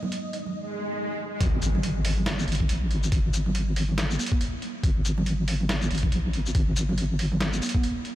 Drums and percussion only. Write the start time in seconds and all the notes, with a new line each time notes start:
0.03 high conga, low conga
0.12 closed hi-hat
0.33 closed hi-hat
0.46 low conga
1.41 kick, closed hi-hat
1.62 closed hi-hat, shaker
1.75 low conga
1.83 closed hi-hat
2.05 open hi-hat
2.17 low conga
2.26 snare, closed hi-hat
2.39 high conga, shaker
2.48 closed hi-hat
2.52 closed hi-hat
2.55 closed hi-hat
2.60 kick
2.69 closed hi-hat
2.91 closed hi-hat
3.03 shaker
3.12 kick, closed hi-hat
3.33 closed hi-hat, shaker
3.46 low conga
3.55 closed hi-hat
3.76 open hi-hat
3.89 low conga
3.98 snare, closed hi-hat
4.10 high conga, shaker
4.19 closed hi-hat, high conga, shaker
4.23 closed hi-hat
4.26 closed hi-hat
4.32 kick, high conga
4.41 closed hi-hat
4.62 closed hi-hat
4.83 kick, closed hi-hat
5.05 closed hi-hat, shaker
5.18 low conga
5.26 closed hi-hat
5.48 open hi-hat
5.60 low conga
5.69 snare, closed hi-hat
5.82 high conga, shaker
5.91 closed hi-hat
5.95 closed hi-hat
5.98 closed hi-hat
6.03 kick
6.12 closed hi-hat
6.33 closed hi-hat
6.46 shaker
6.55 kick, closed hi-hat
6.76 closed hi-hat, shaker
6.89 low conga
6.98 closed hi-hat
7.19 open hi-hat
7.32 low conga
7.41 snare, closed hi-hat
7.53 high conga, shaker
7.62 closed hi-hat, high conga, shaker
7.66 closed hi-hat
7.69 closed hi-hat
7.75 kick, high conga
7.83 closed hi-hat
8.05 closed hi-hat